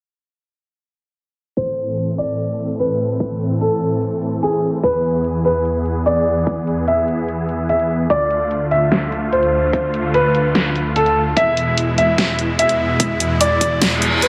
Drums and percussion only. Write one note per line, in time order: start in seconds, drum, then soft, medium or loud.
1.57 kick loud
1.57 closed hi-hat medium
1.77 closed hi-hat soft
1.98 closed hi-hat medium
2.18 closed hi-hat soft
2.39 closed hi-hat medium
2.59 closed hi-hat soft
2.79 closed hi-hat medium
2.90 closed hi-hat soft
3.20 kick loud
3.20 closed hi-hat medium
3.41 closed hi-hat soft
3.61 closed hi-hat medium
3.81 closed hi-hat soft
4.02 closed hi-hat medium
4.22 closed hi-hat soft
4.43 closed hi-hat medium
4.53 closed hi-hat soft
4.83 kick loud
4.83 closed hi-hat medium
5.04 closed hi-hat soft
5.24 closed hi-hat medium
5.45 closed hi-hat soft
5.65 closed hi-hat medium
5.86 closed hi-hat soft
6.06 closed hi-hat medium
6.16 closed hi-hat soft
6.47 kick loud
6.47 closed hi-hat medium
6.67 closed hi-hat soft
6.88 closed hi-hat medium
7.08 closed hi-hat soft
7.28 closed hi-hat medium
7.49 closed hi-hat soft
7.69 closed hi-hat medium
7.80 closed hi-hat soft
8.10 kick loud
8.10 closed hi-hat medium
8.31 closed hi-hat soft
8.51 closed hi-hat medium
8.71 closed hi-hat soft
8.92 snare loud
8.92 closed hi-hat medium
9.12 closed hi-hat soft
9.33 closed hi-hat medium
9.43 closed hi-hat soft
9.73 kick loud
9.73 closed hi-hat medium
9.94 closed hi-hat soft
10.14 closed hi-hat medium
10.35 closed hi-hat soft
10.55 snare loud
10.55 closed hi-hat medium
10.76 closed hi-hat soft
10.96 closed hi-hat medium
11.06 closed hi-hat soft
11.37 kick loud
11.37 closed hi-hat medium
11.57 closed hi-hat soft
11.78 closed hi-hat medium
11.98 closed hi-hat soft
12.18 snare loud
12.18 closed hi-hat medium
12.39 closed hi-hat soft
12.59 closed hi-hat medium
12.69 closed hi-hat soft
13.00 kick loud
13.00 closed hi-hat medium
13.20 closed hi-hat medium
13.41 closed hi-hat medium
13.61 kick medium
13.61 closed hi-hat soft
13.82 snare loud
13.82 closed hi-hat medium
14.02 closed hi-hat soft
14.22 closed hi-hat medium